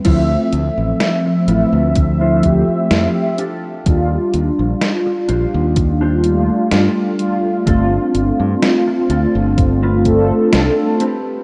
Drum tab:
CC |x-------|--------|--------|
HH |xxxxxxxx|xxxxxxxx|xxxxxxxx|
SD |--o---o-|--o---o-|--o---o-|
BD |o---oo--|o---o---|o---oo--|